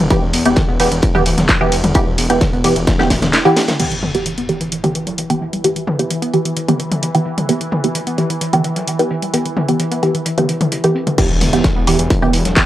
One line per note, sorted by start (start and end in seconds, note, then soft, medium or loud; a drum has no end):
0.10 0.15 E3 loud
0.10 0.20 E3 medium
0.10 0.20 B3 medium
0.10 0.20 G4 medium
0.10 kick loud
0.10 closed hi-hat medium
0.22 0.31 E1 medium
0.22 0.29 E3 medium
0.33 0.43 E1 loud
0.33 0.38 B3 medium
0.33 closed hi-hat medium
0.33 open hi-hat loud
0.33 ride medium
0.45 0.54 E1 medium
0.45 0.61 E3 medium
0.45 0.61 B3 medium
0.45 0.61 G4 medium
0.45 closed hi-hat medium
0.56 0.67 E3 medium
0.56 kick loud
0.56 snare loud
0.56 closed hi-hat loud
0.56 closed hi-hat medium
0.56 mid tom medium
0.68 0.77 E1 medium
0.68 0.78 B3 loud
0.80 0.89 E1 loud
0.80 0.86 E3 medium
0.80 0.90 E3 medium
0.80 0.90 B3 medium
0.80 0.90 G4 medium
0.80 snare soft
0.80 closed hi-hat medium
0.80 open hi-hat medium
0.80 ride medium
0.92 1.00 E1 medium
0.92 0.98 E3 loud
0.92 closed hi-hat medium
1.02 1.13 E3 medium
1.02 kick loud
1.02 closed hi-hat loud
1.02 closed hi-hat medium
1.14 1.23 E1 medium
1.14 1.24 E3 medium
1.14 1.24 B3 medium
1.14 1.24 G4 loud
1.14 closed hi-hat soft
1.14 mid tom medium
1.26 1.35 D1 loud
1.26 1.36 E3 loud
1.26 closed hi-hat medium
1.26 open hi-hat loud
1.26 ride medium
1.38 1.47 E1 medium
1.38 1.44 F#3 medium
1.38 snare medium
1.38 closed hi-hat medium
1.38 mid tom loud
1.49 1.56 E3 medium
1.49 kick loud
1.49 snare loud
1.49 clap loud
1.49 closed hi-hat medium
1.61 1.70 E1 medium
1.61 1.76 E3 medium
1.61 1.76 B3 medium
1.61 1.76 G4 loud
1.72 1.81 E1 loud
1.72 1.79 E3 medium
1.72 closed hi-hat medium
1.72 open hi-hat medium
1.72 ride medium
1.84 1.93 E1 medium
1.84 1.90 G3 medium
1.84 closed hi-hat medium
1.84 mid tom loud
1.95 2.05 E3 medium
1.95 1.99 E3 loud
1.95 2.05 B3 medium
1.95 2.05 G4 medium
1.95 kick loud
1.95 closed hi-hat loud
1.95 closed hi-hat medium
2.07 2.16 E1 medium
2.07 2.13 E3 medium
2.18 2.28 E1 loud
2.18 2.22 B3 medium
2.18 closed hi-hat medium
2.18 open hi-hat loud
2.18 ride medium
2.30 2.39 E1 loud
2.30 2.45 E3 medium
2.30 2.45 B3 medium
2.30 2.45 G4 medium
2.30 closed hi-hat medium
2.41 2.51 E3 medium
2.41 kick loud
2.41 snare loud
2.41 closed hi-hat medium
2.41 mid tom medium
2.53 2.62 E1 medium
2.53 2.63 B3 loud
2.53 closed hi-hat soft
2.64 2.74 E1 loud
2.64 2.74 E3 medium
2.64 2.71 E3 medium
2.64 2.74 B3 medium
2.64 2.74 G4 medium
2.64 closed hi-hat medium
2.64 open hi-hat medium
2.64 ride medium
2.76 2.85 E1 medium
2.76 2.83 E3 loud
2.76 closed hi-hat medium
2.87 2.98 E3 medium
2.87 kick loud
2.87 snare medium
2.87 closed hi-hat medium
2.99 3.08 E1 medium
2.99 3.09 E3 medium
2.99 3.09 B3 medium
2.99 3.09 G4 loud
2.99 snare medium
2.99 mid tom medium
3.10 3.20 D1 loud
3.10 3.15 E3 loud
3.10 kick medium
3.10 snare medium
3.10 closed hi-hat medium
3.10 open hi-hat loud
3.10 ride medium
3.22 3.31 E1 medium
3.22 3.32 E3 medium
3.22 snare medium
3.22 closed hi-hat medium
3.22 mid tom medium
3.33 3.44 E4 medium
3.33 snare loud
3.33 snare medium
3.33 clap loud
3.33 closed hi-hat medium
3.45 3.61 E3 loud
3.45 3.61 B3 medium
3.45 3.52 E4 loud
3.45 3.61 G4 loud
3.45 closed hi-hat soft
3.56 3.63 B3 medium
3.56 snare loud
3.56 closed hi-hat medium
3.56 open hi-hat medium
3.56 ride medium
3.68 snare medium
3.68 snare loud
3.68 closed hi-hat medium
3.68 mid tom medium
3.80 3.90 E3 medium
3.80 11.17 E3 medium
3.80 3.84 E3 loud
3.80 3.90 B3 medium
3.80 3.90 G4 medium
3.80 closed hi-hat medium
3.80 crash medium
3.80 impact medium
3.91 3.98 E3 medium
3.91 closed hi-hat medium
4.02 4.07 B3 medium
4.02 closed hi-hat medium
4.02 mid tom medium
4.15 4.30 E3 medium
4.15 4.30 B3 medium
4.15 4.30 G4 medium
4.15 closed hi-hat medium
4.26 4.36 E3 medium
4.26 closed hi-hat medium
4.38 4.47 B3 loud
4.38 closed hi-hat medium
4.49 4.59 E3 medium
4.49 4.56 E3 medium
4.49 4.59 B3 medium
4.49 4.59 G4 medium
4.49 snare soft
4.49 closed hi-hat soft
4.49 closed hi-hat medium
4.61 4.67 E3 loud
4.61 closed hi-hat medium
4.72 4.82 E3 medium
4.72 closed hi-hat medium
4.84 4.93 E3 medium
4.84 4.93 B3 medium
4.84 4.93 G4 loud
4.84 closed hi-hat medium
4.84 closed hi-hat soft
4.84 mid tom medium
4.95 5.05 E3 loud
4.95 closed hi-hat medium
5.07 5.13 F#3 medium
5.07 snare medium
5.07 closed hi-hat medium
5.18 5.25 E3 medium
5.18 closed hi-hat medium
5.30 5.45 E3 medium
5.30 5.45 B3 medium
5.30 5.45 G4 loud
5.30 closed hi-hat medium
5.41 5.48 E3 medium
5.41 closed hi-hat medium
5.53 5.60 G3 medium
5.53 closed hi-hat medium
5.64 5.68 E3 loud
5.64 5.74 E3 medium
5.64 5.74 B3 medium
5.64 5.74 G4 medium
5.64 closed hi-hat medium
5.76 5.83 E3 medium
5.76 closed hi-hat medium
5.87 5.91 B3 medium
5.87 closed hi-hat medium
5.87 mid tom medium
5.99 6.14 E3 medium
5.99 6.14 B3 medium
5.99 6.14 G4 medium
5.99 closed hi-hat medium
6.10 6.21 E3 medium
6.10 closed hi-hat medium
6.22 6.32 B3 loud
6.22 closed hi-hat medium
6.22 closed hi-hat soft
6.34 6.40 E3 medium
6.34 6.43 E3 medium
6.34 6.43 B3 medium
6.34 6.43 G4 medium
6.34 closed hi-hat soft
6.34 closed hi-hat medium
6.45 6.52 E3 loud
6.45 closed hi-hat medium
6.57 6.67 E3 medium
6.57 closed hi-hat medium
6.68 6.78 E3 medium
6.68 6.78 B3 medium
6.68 6.78 G4 loud
6.68 closed hi-hat medium
6.68 mid tom medium
6.79 6.90 E3 loud
6.79 closed hi-hat medium
6.91 6.98 F#3 medium
6.91 closed hi-hat medium
6.91 mid tom medium
7.02 7.10 E3 medium
7.02 closed hi-hat medium
7.15 7.30 E3 medium
7.15 7.30 B3 medium
7.15 7.30 G4 loud
7.15 closed hi-hat medium
7.15 closed hi-hat soft
7.25 7.33 E3 medium
7.25 closed hi-hat medium
7.38 7.44 G3 medium
7.38 closed hi-hat medium
7.38 mid tom medium
7.49 7.59 E3 medium
7.49 7.53 E3 loud
7.49 7.59 B3 medium
7.49 7.59 G4 medium
7.49 closed hi-hat medium
7.61 7.67 E3 medium
7.61 closed hi-hat medium
7.71 7.76 B3 medium
7.71 closed hi-hat medium
7.71 mid tom medium
7.84 7.99 E3 medium
7.84 7.99 B3 medium
7.84 7.99 G4 medium
7.84 closed hi-hat medium
7.95 8.05 E3 medium
7.95 closed hi-hat medium
8.07 8.17 B3 loud
8.07 closed hi-hat medium
8.17 8.28 E3 medium
8.17 8.25 E3 medium
8.17 8.28 B3 medium
8.17 8.28 G4 medium
8.17 snare soft
8.17 closed hi-hat soft
8.17 closed hi-hat medium
8.30 8.36 E3 loud
8.30 closed hi-hat medium
8.41 8.52 E3 medium
8.41 closed hi-hat medium
8.53 8.63 E3 medium
8.53 8.63 B3 medium
8.53 8.63 G4 loud
8.53 closed hi-hat medium
8.53 closed hi-hat soft
8.53 mid tom medium
8.64 8.75 E3 loud
8.64 closed hi-hat medium
8.76 8.83 F#3 medium
8.76 snare medium
8.76 closed hi-hat medium
8.88 8.94 E3 medium
8.88 closed hi-hat medium
8.99 9.14 E3 medium
8.99 9.14 B3 medium
8.99 9.14 G4 loud
8.99 closed hi-hat medium
9.11 9.17 E3 medium
9.11 closed hi-hat medium
9.22 9.29 G3 medium
9.22 closed hi-hat medium
9.34 9.43 E3 medium
9.34 9.38 E3 loud
9.34 9.43 B3 medium
9.34 9.43 G4 medium
9.34 closed hi-hat medium
9.46 9.52 E3 medium
9.46 closed hi-hat soft
9.57 9.61 B3 medium
9.57 closed hi-hat medium
9.57 mid tom medium
9.68 9.84 E3 medium
9.68 9.84 B3 medium
9.68 9.84 G4 medium
9.68 closed hi-hat medium
9.80 9.90 E3 medium
9.80 closed hi-hat medium
9.92 10.01 B3 loud
9.92 closed hi-hat soft
10.03 10.10 E3 medium
10.03 10.13 E3 medium
10.03 10.13 B3 medium
10.03 10.13 G4 medium
10.03 closed hi-hat medium
10.03 closed hi-hat soft
10.14 10.21 E3 loud
10.14 closed hi-hat medium
10.25 10.36 E3 medium
10.25 closed hi-hat medium
10.38 10.47 E3 medium
10.38 10.47 B3 medium
10.38 10.47 G4 loud
10.38 closed hi-hat medium
10.38 mid tom medium
10.49 10.56 E3 medium
10.49 closed hi-hat medium
10.61 10.67 E3 medium
10.61 closed hi-hat medium
10.61 mid tom medium
10.72 10.79 E3 medium
10.72 closed hi-hat medium
10.84 10.99 E3 medium
10.84 10.99 B3 medium
10.84 10.93 E4 medium
10.84 10.99 G4 loud
10.84 closed hi-hat soft
10.95 10.99 C4 medium
10.95 closed hi-hat medium
11.07 11.13 D3 loud
11.07 closed hi-hat soft
11.07 mid tom medium
11.18 11.22 E3 loud
11.18 12.66 E3 medium
11.18 11.28 E3 medium
11.18 11.28 B3 medium
11.18 11.28 G4 medium
11.18 kick loud
11.18 closed hi-hat medium
11.18 crash loud
11.18 impact medium
11.30 11.39 E1 medium
11.30 11.36 E3 medium
11.41 11.51 E1 loud
11.41 11.45 B3 medium
11.41 closed hi-hat medium
11.41 open hi-hat loud
11.41 mid tom medium
11.53 11.62 E1 medium
11.53 11.68 E3 medium
11.53 11.68 B3 medium
11.53 11.68 G4 medium
11.53 closed hi-hat medium
11.64 11.74 E3 medium
11.64 kick loud
11.64 snare loud
11.64 closed hi-hat medium
11.76 11.85 E1 medium
11.76 11.86 B3 loud
11.87 11.97 E1 loud
11.87 11.97 E3 medium
11.87 11.94 E3 medium
11.87 11.97 B3 medium
11.87 11.97 G4 medium
11.87 snare soft
11.87 closed hi-hat medium
11.87 open hi-hat loud
11.99 12.08 E1 medium
11.99 12.06 E3 loud
11.99 closed hi-hat medium
12.10 12.21 E3 medium
12.10 kick loud
12.10 closed hi-hat medium
12.22 12.31 E1 medium
12.22 12.32 E3 medium
12.22 12.32 B3 medium
12.22 12.32 G4 loud
12.22 closed hi-hat soft
12.22 mid tom medium
12.33 12.43 E1 loud
12.33 12.44 E3 loud
12.33 closed hi-hat medium
12.33 open hi-hat loud
12.45 12.54 E1 medium
12.45 12.52 F#3 medium
12.45 snare medium
12.45 closed hi-hat medium
12.56 12.63 E3 medium
12.56 kick loud
12.56 snare loud
12.56 clap loud
12.56 closed hi-hat medium